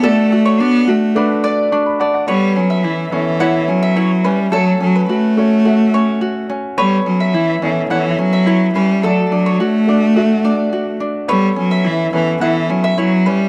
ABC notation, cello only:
X:1
M:4/4
L:1/8
Q:1/4=106
K:Amix
V:1 name="Cello" clef=bass
A,2 B, A,2 z3 | G, F, E, E,2 F,2 G, | F, F, A,4- A, z | G, F, E, E, E, F,2 G, |
F, F, A,4- A, z | G, F, E, E, E, F, F, G, |]